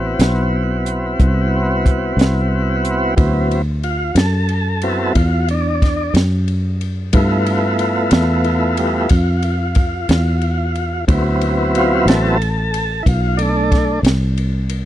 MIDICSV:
0, 0, Header, 1, 4, 480
1, 0, Start_track
1, 0, Tempo, 660793
1, 2309, Time_signature, 12, 3, 24, 8
1, 6630, Tempo, 655022
1, 10825, End_track
2, 0, Start_track
2, 0, Title_t, "Tonewheel organ"
2, 0, Program_c, 0, 16
2, 0, Note_on_c, 0, 59, 64
2, 0, Note_on_c, 0, 60, 59
2, 0, Note_on_c, 0, 64, 59
2, 0, Note_on_c, 0, 66, 66
2, 2281, Note_off_c, 0, 60, 0
2, 2282, Note_off_c, 0, 59, 0
2, 2284, Note_off_c, 0, 64, 0
2, 2285, Note_off_c, 0, 66, 0
2, 2298, Note_on_c, 0, 54, 47
2, 2302, Note_on_c, 0, 59, 47
2, 2305, Note_on_c, 0, 64, 53
2, 2312, Note_on_c, 0, 60, 49
2, 2623, Note_off_c, 0, 54, 0
2, 2625, Note_off_c, 0, 59, 0
2, 2626, Note_off_c, 0, 64, 0
2, 2630, Note_off_c, 0, 60, 0
2, 2787, Note_on_c, 0, 65, 83
2, 3021, Note_off_c, 0, 65, 0
2, 3030, Note_on_c, 0, 69, 69
2, 3511, Note_on_c, 0, 54, 45
2, 3511, Note_on_c, 0, 59, 43
2, 3511, Note_on_c, 0, 60, 41
2, 3511, Note_on_c, 0, 64, 49
2, 3715, Note_off_c, 0, 64, 0
2, 3724, Note_on_c, 0, 64, 46
2, 3727, Note_off_c, 0, 54, 0
2, 3727, Note_off_c, 0, 59, 0
2, 3727, Note_off_c, 0, 60, 0
2, 3729, Note_off_c, 0, 69, 0
2, 3752, Note_off_c, 0, 64, 0
2, 3755, Note_on_c, 0, 65, 80
2, 3986, Note_off_c, 0, 65, 0
2, 4000, Note_on_c, 0, 62, 86
2, 4461, Note_off_c, 0, 62, 0
2, 5178, Note_on_c, 0, 65, 53
2, 5181, Note_on_c, 0, 59, 50
2, 5188, Note_on_c, 0, 64, 62
2, 5189, Note_on_c, 0, 57, 49
2, 6367, Note_off_c, 0, 57, 0
2, 6376, Note_on_c, 0, 57, 42
2, 6378, Note_off_c, 0, 64, 0
2, 6379, Note_off_c, 0, 59, 0
2, 6380, Note_on_c, 0, 55, 50
2, 6387, Note_on_c, 0, 59, 45
2, 6387, Note_on_c, 0, 64, 54
2, 6596, Note_off_c, 0, 57, 0
2, 6599, Note_off_c, 0, 55, 0
2, 6603, Note_off_c, 0, 59, 0
2, 6603, Note_off_c, 0, 64, 0
2, 8036, Note_off_c, 0, 65, 0
2, 8059, Note_on_c, 0, 60, 53
2, 8062, Note_on_c, 0, 54, 54
2, 8064, Note_on_c, 0, 59, 50
2, 8074, Note_on_c, 0, 64, 61
2, 8566, Note_on_c, 0, 65, 102
2, 8780, Note_off_c, 0, 54, 0
2, 8785, Note_off_c, 0, 59, 0
2, 8789, Note_off_c, 0, 60, 0
2, 8789, Note_on_c, 0, 54, 40
2, 8791, Note_off_c, 0, 64, 0
2, 8792, Note_off_c, 0, 65, 0
2, 8794, Note_on_c, 0, 59, 42
2, 8796, Note_on_c, 0, 69, 77
2, 8798, Note_on_c, 0, 60, 45
2, 8800, Note_on_c, 0, 64, 44
2, 9006, Note_off_c, 0, 54, 0
2, 9009, Note_off_c, 0, 59, 0
2, 9011, Note_off_c, 0, 60, 0
2, 9012, Note_off_c, 0, 64, 0
2, 9488, Note_on_c, 0, 64, 55
2, 9491, Note_off_c, 0, 69, 0
2, 9515, Note_off_c, 0, 64, 0
2, 9529, Note_on_c, 0, 65, 76
2, 9740, Note_on_c, 0, 62, 89
2, 9747, Note_on_c, 0, 57, 89
2, 9752, Note_off_c, 0, 65, 0
2, 10197, Note_off_c, 0, 57, 0
2, 10208, Note_off_c, 0, 62, 0
2, 10825, End_track
3, 0, Start_track
3, 0, Title_t, "Fingered electric bass"
3, 0, Program_c, 1, 33
3, 0, Note_on_c, 1, 33, 78
3, 129, Note_off_c, 1, 33, 0
3, 140, Note_on_c, 1, 35, 77
3, 842, Note_off_c, 1, 35, 0
3, 867, Note_on_c, 1, 36, 78
3, 1567, Note_off_c, 1, 36, 0
3, 1574, Note_on_c, 1, 36, 77
3, 2280, Note_off_c, 1, 36, 0
3, 2305, Note_on_c, 1, 38, 85
3, 3006, Note_off_c, 1, 38, 0
3, 3016, Note_on_c, 1, 42, 82
3, 3721, Note_off_c, 1, 42, 0
3, 3743, Note_on_c, 1, 40, 80
3, 4445, Note_off_c, 1, 40, 0
3, 4459, Note_on_c, 1, 42, 87
3, 5163, Note_off_c, 1, 42, 0
3, 5180, Note_on_c, 1, 43, 79
3, 5883, Note_off_c, 1, 43, 0
3, 5895, Note_on_c, 1, 40, 87
3, 6598, Note_off_c, 1, 40, 0
3, 6615, Note_on_c, 1, 41, 76
3, 7322, Note_off_c, 1, 41, 0
3, 7336, Note_on_c, 1, 40, 80
3, 8043, Note_off_c, 1, 40, 0
3, 8061, Note_on_c, 1, 38, 84
3, 8764, Note_off_c, 1, 38, 0
3, 8776, Note_on_c, 1, 33, 81
3, 9481, Note_off_c, 1, 33, 0
3, 9513, Note_on_c, 1, 35, 86
3, 10207, Note_off_c, 1, 35, 0
3, 10223, Note_on_c, 1, 36, 85
3, 10825, Note_off_c, 1, 36, 0
3, 10825, End_track
4, 0, Start_track
4, 0, Title_t, "Drums"
4, 142, Note_on_c, 9, 42, 76
4, 156, Note_on_c, 9, 38, 98
4, 215, Note_off_c, 9, 42, 0
4, 229, Note_off_c, 9, 38, 0
4, 626, Note_on_c, 9, 42, 59
4, 699, Note_off_c, 9, 42, 0
4, 869, Note_on_c, 9, 36, 65
4, 869, Note_on_c, 9, 42, 65
4, 941, Note_off_c, 9, 42, 0
4, 942, Note_off_c, 9, 36, 0
4, 1349, Note_on_c, 9, 36, 67
4, 1352, Note_on_c, 9, 42, 55
4, 1422, Note_off_c, 9, 36, 0
4, 1424, Note_off_c, 9, 42, 0
4, 1593, Note_on_c, 9, 42, 74
4, 1607, Note_on_c, 9, 38, 97
4, 1665, Note_off_c, 9, 42, 0
4, 1680, Note_off_c, 9, 38, 0
4, 2068, Note_on_c, 9, 42, 53
4, 2141, Note_off_c, 9, 42, 0
4, 2307, Note_on_c, 9, 51, 71
4, 2308, Note_on_c, 9, 36, 107
4, 2380, Note_off_c, 9, 51, 0
4, 2381, Note_off_c, 9, 36, 0
4, 2552, Note_on_c, 9, 51, 55
4, 2625, Note_off_c, 9, 51, 0
4, 2785, Note_on_c, 9, 51, 47
4, 2857, Note_off_c, 9, 51, 0
4, 3019, Note_on_c, 9, 51, 79
4, 3033, Note_on_c, 9, 38, 99
4, 3091, Note_off_c, 9, 51, 0
4, 3106, Note_off_c, 9, 38, 0
4, 3259, Note_on_c, 9, 51, 51
4, 3331, Note_off_c, 9, 51, 0
4, 3498, Note_on_c, 9, 51, 55
4, 3571, Note_off_c, 9, 51, 0
4, 3743, Note_on_c, 9, 51, 67
4, 3747, Note_on_c, 9, 36, 66
4, 3815, Note_off_c, 9, 51, 0
4, 3819, Note_off_c, 9, 36, 0
4, 3983, Note_on_c, 9, 51, 56
4, 4056, Note_off_c, 9, 51, 0
4, 4228, Note_on_c, 9, 36, 68
4, 4230, Note_on_c, 9, 51, 61
4, 4245, Note_on_c, 9, 38, 27
4, 4301, Note_off_c, 9, 36, 0
4, 4303, Note_off_c, 9, 51, 0
4, 4317, Note_off_c, 9, 38, 0
4, 4464, Note_on_c, 9, 51, 74
4, 4479, Note_on_c, 9, 38, 103
4, 4537, Note_off_c, 9, 51, 0
4, 4551, Note_off_c, 9, 38, 0
4, 4705, Note_on_c, 9, 51, 52
4, 4777, Note_off_c, 9, 51, 0
4, 4946, Note_on_c, 9, 51, 49
4, 5019, Note_off_c, 9, 51, 0
4, 5178, Note_on_c, 9, 51, 79
4, 5185, Note_on_c, 9, 36, 113
4, 5250, Note_off_c, 9, 51, 0
4, 5257, Note_off_c, 9, 36, 0
4, 5421, Note_on_c, 9, 51, 68
4, 5494, Note_off_c, 9, 51, 0
4, 5657, Note_on_c, 9, 51, 54
4, 5730, Note_off_c, 9, 51, 0
4, 5889, Note_on_c, 9, 51, 74
4, 5904, Note_on_c, 9, 38, 104
4, 5962, Note_off_c, 9, 51, 0
4, 5977, Note_off_c, 9, 38, 0
4, 6133, Note_on_c, 9, 51, 51
4, 6206, Note_off_c, 9, 51, 0
4, 6372, Note_on_c, 9, 51, 57
4, 6445, Note_off_c, 9, 51, 0
4, 6605, Note_on_c, 9, 51, 72
4, 6615, Note_on_c, 9, 36, 67
4, 6678, Note_off_c, 9, 51, 0
4, 6688, Note_off_c, 9, 36, 0
4, 6848, Note_on_c, 9, 51, 54
4, 6922, Note_off_c, 9, 51, 0
4, 7086, Note_on_c, 9, 51, 60
4, 7095, Note_on_c, 9, 36, 73
4, 7159, Note_off_c, 9, 51, 0
4, 7168, Note_off_c, 9, 36, 0
4, 7335, Note_on_c, 9, 51, 74
4, 7349, Note_on_c, 9, 38, 105
4, 7408, Note_off_c, 9, 51, 0
4, 7423, Note_off_c, 9, 38, 0
4, 7574, Note_on_c, 9, 51, 45
4, 7647, Note_off_c, 9, 51, 0
4, 7822, Note_on_c, 9, 51, 45
4, 7896, Note_off_c, 9, 51, 0
4, 8065, Note_on_c, 9, 36, 109
4, 8065, Note_on_c, 9, 51, 81
4, 8138, Note_off_c, 9, 36, 0
4, 8138, Note_off_c, 9, 51, 0
4, 8306, Note_on_c, 9, 51, 58
4, 8379, Note_off_c, 9, 51, 0
4, 8551, Note_on_c, 9, 51, 57
4, 8625, Note_off_c, 9, 51, 0
4, 8792, Note_on_c, 9, 51, 81
4, 8807, Note_on_c, 9, 38, 105
4, 8865, Note_off_c, 9, 51, 0
4, 8880, Note_off_c, 9, 38, 0
4, 9040, Note_on_c, 9, 51, 58
4, 9113, Note_off_c, 9, 51, 0
4, 9276, Note_on_c, 9, 51, 66
4, 9349, Note_off_c, 9, 51, 0
4, 9513, Note_on_c, 9, 36, 70
4, 9515, Note_on_c, 9, 51, 73
4, 9587, Note_off_c, 9, 36, 0
4, 9589, Note_off_c, 9, 51, 0
4, 9751, Note_on_c, 9, 51, 61
4, 9824, Note_off_c, 9, 51, 0
4, 9993, Note_on_c, 9, 36, 64
4, 9994, Note_on_c, 9, 51, 57
4, 10009, Note_on_c, 9, 38, 31
4, 10066, Note_off_c, 9, 36, 0
4, 10067, Note_off_c, 9, 51, 0
4, 10082, Note_off_c, 9, 38, 0
4, 10233, Note_on_c, 9, 51, 78
4, 10248, Note_on_c, 9, 38, 95
4, 10307, Note_off_c, 9, 51, 0
4, 10321, Note_off_c, 9, 38, 0
4, 10476, Note_on_c, 9, 51, 58
4, 10549, Note_off_c, 9, 51, 0
4, 10710, Note_on_c, 9, 51, 60
4, 10783, Note_off_c, 9, 51, 0
4, 10825, End_track
0, 0, End_of_file